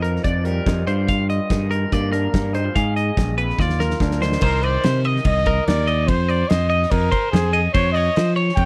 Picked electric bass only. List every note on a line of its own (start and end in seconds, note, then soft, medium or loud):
0.00 0.17 F2 medium
0.25 0.59 F2 medium
0.66 0.84 F2 medium
0.87 1.39 G2 loud
1.51 1.85 G2 medium
1.93 2.27 G2 loud
2.34 2.68 G2 loud
2.76 3.10 G#2 medium
3.17 3.51 A#1 medium
3.59 3.93 D#2 medium
4.01 4.35 D2 medium
4.42 4.76 C2 loud
4.85 5.18 C3 loud
5.25 5.59 C2 loud
5.68 6.09 D#2 loud
6.09 6.43 F2 loud
6.51 6.85 F2 loud
6.92 7.09 F2 loud
7.33 7.67 F2 loud
7.74 8.08 F2 loud
8.17 8.50 F3 loud
8.57 8.65 F2 loud